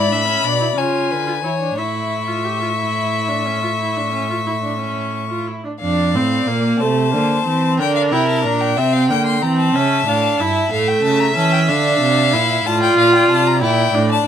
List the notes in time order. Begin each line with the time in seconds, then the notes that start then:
Already playing: G#2 E4 D5 B5
0.11 A2 D4 E5
0.28 C#4
0.44 B2 D4 D5
0.61 E4
0.77 C#3 F4 C#5 G#5
1.10 D3 B4
1.27 F4
1.43 E3 E4 C#5
1.60 D4
1.77 A2 E4 E5 C#6
2.28 F4
2.45 G4
2.61 F4
2.78 E4
3.29 D4
3.46 C#4
3.63 F4
3.80 E4
3.97 D4
4.13 C#4
4.30 F4
4.47 E4
4.63 D4
4.80 C#4
5.31 F4
5.48 E4
5.65 D4
5.81 F2 D4 D5 F5
6.14 A2 C4
6.47 A#2 A#3
6.80 C3 A3 C5 A5
7.13 D3 A#3
7.46 E3 C4
7.78 D3 D4 A#4 G5
7.96 F5
8.11 C3 E4 G5
8.28 A5
8.44 A#2 D4 A#5
8.61 G5
8.77 C3 C4 E5 G5
8.93 F5
9.09 D3 A#3 G5
9.26 C6
9.42 E3 C4 A#5
9.59 A5
9.74 C#3 C#4 E5
10.07 A2 D4 F5
10.39 G2 E4 E5
10.72 A2 A3 F5
10.88 G5
11.04 C#3 A5
11.20 A#5
11.36 E3 C#4 A5
11.53 G5
11.69 D3 D4 F5
12.01 C3
12.33 A#2 E4
12.65 A2 F4 D5 A5
12.83 G5
12.97 A#2 F5
13.15 G5
13.29 C3 A5
13.47 A#5
13.62 A#2 E4 D5 G5
13.94 A2 D4
14.12 A5